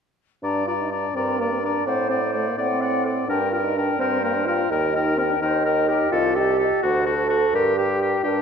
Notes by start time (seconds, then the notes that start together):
0.43 G2 D4 D5 A#5
0.67 F4 D5 A#5
0.80 D#4
0.90 D4 D5 A#5
1.15 G2 C4 A#4 D5 A#5
1.39 A#3 D5 A#5
1.52 C4
1.61 D4 D5 A#5
1.86 A2 C4 C5 D5 F#5
2.09 C4 D5 F#5
2.33 A3 D5 F#5
2.47 A#3
2.58 A2 C4 D5 F#5
2.81 D5 F#5
3.05 A4 D5 F#5
3.28 G2 D4 A#4 G5
3.51 F4 A#4 G5
3.64 D#4
3.75 D4 A#4 G5
3.99 G2 C4 A#4 C5 G5
4.22 A#3 A#4 G5
4.35 D4
4.46 F4 A#4 G5
4.70 D#2 D#4 A#4 G5
4.93 D#4 A#4 G5
5.17 C4 A#4 G5
5.30 D4
5.40 D#2 D#4 A#4 C5 G5
5.65 A#4 G5
5.88 G4 A#4 G5
6.11 C2 F4 A4 D#5
6.35 G4 A4 D#5
6.59 A4 D#5
6.82 D2 F#4 A4 C5
7.06 F#4 A4 C5
7.30 F#4 C5
7.53 G2 G4 A#4
7.77 G4 A#4
8.02 G4 A#4
8.23 G2 D4 G4 A#4